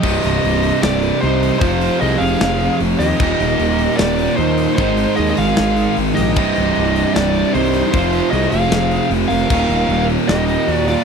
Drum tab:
CC |x-------|--------|x-------|--------|
HH |-ooooooo|oooooooo|-ooooooo|oooooooo|
SD |----o---|----o---|----o---|----o---|
BD |o-------|o-------|o-------|o-------|

CC |x-------|--------|x-------|
HH |-ooooooo|oooooooo|-ooooooo|
SD |----o---|----o---|----o---|
BD |o-------|o-------|o-------|